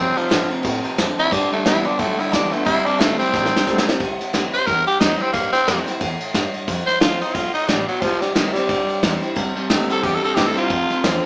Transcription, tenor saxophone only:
0.00 0.19 C4 loud
0.17 0.50 F3 loud
1.19 1.34 E4 loud
1.33 1.51 D4 loud
1.53 1.66 A3 loud
1.67 1.88 E4 loud
1.86 2.01 D4 loud
1.99 2.21 A3 loud
2.20 2.35 E4 loud
2.34 2.54 D4 medium
2.52 2.65 A3 loud
2.65 2.87 E4 loud
2.86 3.01 D4 loud
3.00 3.18 A3 loud
3.19 3.84 C4 loud
4.54 4.68 C5 loud
4.66 4.86 A#4 loud
4.87 4.99 G4 loud
5.00 5.23 D#4 medium
5.21 5.32 C4 loud
5.33 5.52 A#3 loud
5.53 5.86 C4 loud
6.86 7.00 C5 loud
7.00 7.20 F4 loud
7.21 7.36 D#4 medium
7.34 7.53 F4 medium
7.54 7.70 D#4 loud
7.68 7.87 G3 medium
7.88 8.02 F#3 loud
8.01 8.22 F3 loud
8.21 8.34 G3 loud
8.35 8.52 D#3 loud
8.53 9.19 G3 loud
9.92 10.05 A4 loud
10.03 10.16 G4 medium
10.14 10.24 A4 loud
10.25 10.36 A4 loud
10.35 10.48 G4 medium
10.46 10.57 A4 medium
10.58 11.23 F4 loud

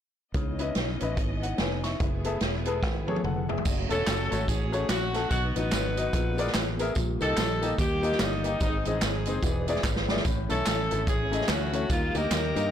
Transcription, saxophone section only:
3.90 4.47 C#4 medium
3.90 4.70 F#4 medium
3.90 4.44 A4 medium
4.48 4.89 C#4 medium
4.48 4.89 G#4 medium
4.89 5.28 A3 medium
4.89 5.28 C#4 medium
4.89 5.27 F#4 loud
5.29 6.09 B3 medium
5.29 5.55 D#4 medium
5.29 5.53 F#4 loud
5.55 6.76 D#4 medium
5.55 6.76 F#4 medium
5.55 6.79 B4 loud
7.22 7.78 D#4 medium
7.22 7.74 A4 loud
7.79 8.19 A#3 medium
7.79 8.19 D#4 medium
7.79 8.20 G4 medium
8.20 8.58 G3 medium
8.20 8.58 A#3 medium
8.20 8.60 D#4 medium
8.61 9.39 G#3 medium
8.61 8.85 C4 medium
8.61 8.84 D#4 medium
8.87 10.06 C4 medium
8.87 10.06 D#4 medium
8.87 10.10 G#4 medium
10.50 11.08 C#4 medium
10.50 11.07 E4 medium
10.50 11.04 A4 medium
11.08 11.48 C#4 medium
11.08 11.87 E4 medium
11.08 11.49 G#4 medium
11.50 11.88 A3 medium
11.50 11.88 C#4 medium
11.50 11.90 F#4 medium
11.91 12.69 A#3 medium
11.91 12.16 F4 loud
12.16 12.71 D#4 medium
12.16 12.71 G4 medium
12.16 12.71 A#4 loud

